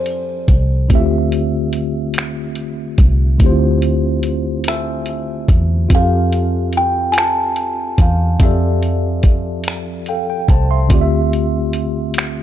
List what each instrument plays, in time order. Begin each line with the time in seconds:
Already playing: fingered electric bass F2, tine electric piano F3 C4 G4 A4 D5, kalimba C5
0.06 closed hi-hat
0.48 fingered electric bass C2, kick, closed hi-hat
0.88 fingered electric bass D2, tine electric piano D3 A3 C4, kick, closed hi-hat
0.93 tine electric piano E4 G4 E5
0.99 tine electric piano F4
1.32 closed hi-hat
1.73 closed hi-hat
2.14 closed hi-hat
2.18 finger snap
2.56 closed hi-hat
2.98 fingered electric bass C2, kick, closed hi-hat
3.38 fingered electric bass D2, tine electric piano D3 A3 C4, kick, closed hi-hat
3.43 tine electric piano E4 G4 C5
3.49 tine electric piano F4
3.82 closed hi-hat
4.23 closed hi-hat
4.64 closed hi-hat
4.68 kalimba E5, finger snap
5.06 closed hi-hat
5.48 fingered electric bass E2, kick, closed hi-hat
5.89 fingered electric bass F2, tine electric piano C4 F4 G4, kick, closed hi-hat
5.94 tine electric piano A4 F5, kalimba F5
6.33 closed hi-hat
6.73 closed hi-hat
6.77 kalimba G5
7.12 kalimba G#5, closed hi-hat
7.18 kalimba A5, finger snap
7.56 closed hi-hat
7.98 fingered electric bass E2, kalimba F5, kick, closed hi-hat
8.38 fingered electric bass F2, tine electric piano F3 C4 G4, kick, closed hi-hat
8.43 tine electric piano A4 D5, kalimba E5
8.83 closed hi-hat
9.23 kick, closed hi-hat
9.64 closed hi-hat
9.68 finger snap
10.06 tine electric piano A4 F5 G5, closed hi-hat
10.30 tine electric piano G5
10.48 fingered electric bass C2, tine electric piano C5 A5, kick, closed hi-hat
10.71 tine electric piano E5 C6
10.88 fingered electric bass D2, tine electric piano D3 A3 C4 F4, kick, closed hi-hat
10.93 tine electric piano G4 D5
11.01 tine electric piano E5
11.33 closed hi-hat
11.73 closed hi-hat
12.14 closed hi-hat
12.18 finger snap